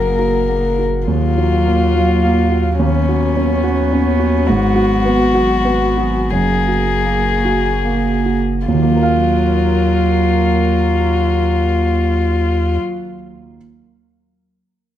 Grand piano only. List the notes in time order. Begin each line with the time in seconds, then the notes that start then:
Already playing: F#2 A#3 F#4
0.19 F#4
0.49 A#3
0.79 F#4
1.07 D#2
1.38 F#3
1.65 A#3
1.94 F#3
2.23 A#3
2.50 F#4
2.79 D#2
3.08 F#4
3.36 C#4
3.63 F#4
3.92 C#4
4.19 F#4
4.49 G#2
4.75 F#4
5.05 B3
5.34 F#4
5.65 B3
5.97 F#4
6.32 F#2
6.68 F#4
7.06 A#3
7.45 F#4
7.85 A#3
8.26 F#4
8.68 D#2
8.74 D#3
8.82 A#3
8.89 F#3
8.96 A#4
9.03 F5